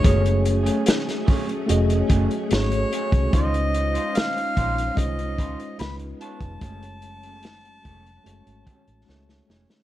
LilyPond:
<<
  \new Staff \with { instrumentName = "Harmonica" } { \time 4/4 \key ges \lydian \tempo 4 = 73 des''8 r2 r8 des''4 | ees''4 f''4 ees''4 ces'''8 a''8~ | a''2.~ a''8 r8 | }
  \new Staff \with { instrumentName = "Clean electric guitar" } { \time 4/4 \key ges \lydian <a des' aes'>16 r8 <a des' aes'>16 r8 <a des' aes'>16 r8. <a des' aes'>16 r8. <a des' aes'>16 r16 | <ees' f' c''>16 r8 <ees' f' c''>16 r8 <ees' f' c''>16 r8. <ees' f' c''>16 r8. <f' ces'' des''>16 r16 | <a des' aes'>16 r8 <a des' aes'>16 r8 <a des' aes'>16 r8. <a des' aes'>16 r8. <a des' aes'>16 r16 | }
  \new Staff \with { instrumentName = "Tine electric piano" } { \time 4/4 \key ges \lydian <aes a des' ges' aes' des''>4. r8 <a des' ges' aes' ees''>4 <a des' ges' aes' des''>4 | <aes des' ees' f' c''>4. r8 <aes des' ees' f' c''>4 <aes des' ees' f' ces''>4 | <aes a des' ges' des''>4. r8 <aes a des' ges' des''>4 <aes a des' ges' des''>4 | }
  \new Staff \with { instrumentName = "String machine" } { \time 4/4 \key ges \lydian << { <ges a>1 | <des' f'>1 | <ges a''>1 | } \\ { <des' aes'>1 | <ees' c''>2. <aes ces'>4 | <des' ges'>1 | } >> }
  \new Staff \with { instrumentName = "Fingered electric bass" } { \clef bass \time 4/4 \key ges \lydian ges,,4 r4 f,,8 ges,,16 r16 aes,,8 r16 c,16 | des,4 r8 bes,,8 c,8 des,16 r16 des,8 r16 f,,16 | ges,,4. f,,8 ges,,16 aes,,16 r16 a,,16 des,8 f,,16 r16 | }
  \new DrumStaff \with { instrumentName = "Drums" } \drummode { \time 4/4 <hh bd>16 hh16 hh16 hh16 <hh sn>16 <hh sn>16 <hho bd>16 hh16 hh16 hh16 <hh bd>16 hh16 <hh sn>16 hh16 hh16 <hh bd>16 | <hh bd>16 hh16 hh16 hh16 <hh sn>16 hh16 <hh bd>16 hh16 <hh bd>16 hh16 <hh bd>16 hh16 <hh sn>16 hh16 hh16 <hh bd>16 | <hh bd>16 hh16 hh16 hh16 <hh sn>16 hh16 <hh bd>16 hh16 hh16 hh16 <hh bd>16 hh16 sn16 sn16 sn16 sn16 | }
>>